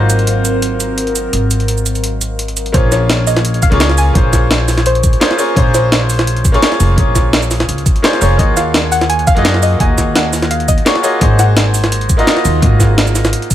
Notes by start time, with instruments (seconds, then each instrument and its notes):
Already playing: upright bass G#1, analog synth pad F#3 C4 A#4 F5, grand piano A#3 D#4 F4 F#4 C5
0.10 closed hi-hat, shaker
0.19 closed hi-hat
0.27 closed hi-hat
0.45 closed hi-hat, shaker
0.62 closed hi-hat
0.80 closed hi-hat, shaker
0.98 closed hi-hat
1.07 closed hi-hat
1.16 closed hi-hat, shaker
1.33 upright bass G#1, closed hi-hat
1.51 closed hi-hat, shaker
1.60 closed hi-hat
1.68 closed hi-hat
1.78 shaker
1.86 closed hi-hat, shaker
1.95 closed hi-hat, shaker
2.04 closed hi-hat
2.21 closed hi-hat, shaker
2.39 closed hi-hat
2.48 closed hi-hat
2.57 closed hi-hat, shaker
2.66 closed hi-hat
2.72 upright bass A#1, grand piano A#3 C#4 F4 G#4 C#5, synth pluck C5, kick, closed hi-hat
2.92 synth pluck C#5, snare, closed hi-hat, shaker
3.10 snare, closed hi-hat
3.27 synth pluck D#5, open hi-hat, shaker
3.36 snare, closed hi-hat
3.45 closed hi-hat
3.54 closed hi-hat
3.62 synth pluck F5, kick, closed hi-hat, shaker
3.70 upright bass C#2, grand piano A#3 C#4 F4 G#4 C#5, closed hi-hat
3.80 snare, closed hi-hat
3.89 snare
3.98 synth pluck G#5, open hi-hat, shaker
4.13 upright bass A#1, grand piano A#3 C#4 F4 G#4 C5, kick, closed hi-hat
4.33 kick, snare, closed hi-hat, shaker
4.51 snare, closed hi-hat
4.68 snare, open hi-hat, shaker
4.78 snare, closed hi-hat
4.86 synth pluck C5, closed hi-hat
4.95 closed hi-hat
5.04 kick, closed hi-hat, shaker
5.13 closed hi-hat
5.20 grand piano A#3 C#4 F4 G#4 C5, synth pluck D#5, snare, closed hi-hat
5.31 snare
5.38 grand piano A#3 C#4 F4 G#4 C#5, open hi-hat, shaker
5.55 upright bass A#1, grand piano A#3 C#4 F4 G#4 C5, synth pluck C#5, kick, closed hi-hat
5.74 synth pluck C5, snare, closed hi-hat, shaker
5.92 snare, closed hi-hat
6.10 open hi-hat, shaker
6.19 snare, closed hi-hat
6.27 closed hi-hat
6.37 closed hi-hat
6.45 kick, closed hi-hat, shaker
6.52 grand piano A#3 C#4 F4 G#4 C#5, closed hi-hat
6.62 snare, closed hi-hat
6.72 snare
6.80 upright bass F1, open hi-hat, shaker
6.96 upright bass A#1, grand piano A#3 C#4 F4 G#4 C#5, kick, closed hi-hat
7.15 kick, snare, closed hi-hat, shaker
7.33 snare, closed hi-hat
7.42 shaker
7.51 snare, open hi-hat, shaker
7.60 snare, closed hi-hat
7.69 upright bass C#2, closed hi-hat
7.78 closed hi-hat
7.86 kick, closed hi-hat, shaker
7.96 closed hi-hat
8.03 grand piano A#3 C#4 F4 G#4 C5, snare, closed hi-hat
8.13 snare
8.20 upright bass F1, grand piano A#3 C#4 F4 G#4 C#5, open hi-hat, shaker
8.37 upright bass D#2, grand piano A#3 F4 F#4 G#4 C#5, synth pluck D#5, kick, closed hi-hat
8.57 synth pluck F5, snare, closed hi-hat, shaker
8.74 snare, closed hi-hat
8.92 synth pluck F#5, open hi-hat, shaker
9.01 snare, closed hi-hat
9.09 synth pluck G#5, closed hi-hat
9.19 closed hi-hat
9.27 synth pluck F5, kick, closed hi-hat, shaker
9.35 upright bass F#2, grand piano A#3 F4 F#4 G#4 D#5, closed hi-hat
9.45 snare, closed hi-hat
9.54 snare
9.63 synth pluck D#5, open hi-hat, shaker
9.78 upright bass D#2, grand piano A#3 D#4 F#4 G#4 D#5, synth pluck G#5, kick, closed hi-hat
9.98 kick, snare, closed hi-hat, shaker
10.15 synth pluck F#5, snare, closed hi-hat
10.33 snare, open hi-hat, shaker
10.42 snare, closed hi-hat
10.51 synth pluck F5, closed hi-hat
10.60 closed hi-hat
10.68 synth pluck D#5, kick, closed hi-hat, shaker
10.78 closed hi-hat
10.85 grand piano A#3 F4 F#4 G#4 C#5, snare, closed hi-hat
10.95 snare
11.03 grand piano A#3 F4 F#4 G#4 D#5, synth pluck C#5, open hi-hat, shaker
11.20 upright bass G#1, grand piano A#3 D#4 F#4 G#4 C5, synth pluck D#5, kick, closed hi-hat
11.39 synth pluck F#5, snare, closed hi-hat, shaker
11.57 snare, closed hi-hat
11.74 open hi-hat, shaker
11.84 snare, closed hi-hat
11.92 closed hi-hat
12.01 closed hi-hat
12.09 kick, closed hi-hat, shaker
12.17 grand piano A#3 D#4 F4 F#4 D#5, closed hi-hat
12.27 snare, closed hi-hat
12.37 snare
12.45 upright bass D#2, open hi-hat, shaker
12.61 upright bass G#1, grand piano A#3 D#4 F4 F#4 D#5, kick, closed hi-hat
12.80 kick, snare, closed hi-hat, shaker
12.98 snare, closed hi-hat
13.07 shaker
13.15 snare, open hi-hat, shaker
13.25 snare, closed hi-hat, shaker
13.33 closed hi-hat
13.42 closed hi-hat
13.51 kick, closed hi-hat, shaker